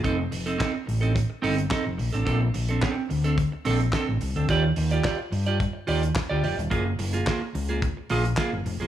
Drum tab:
HH |x-oxx-oxx-oxx-ox|x-oxx-oxx-oxx-ox|x-oxx-oxx-oxx-ox|x-oxx-oxx-oxx-ox|
CP |----x-------x---|----x-------x---|----x-------x---|----x-------x---|
SD |----o-------o---|----o-------o---|----o-------o---|----o-------o---|
BD |o---o---o---o---|o---o---o---o---|o---o---o---o---|o---o---o---o---|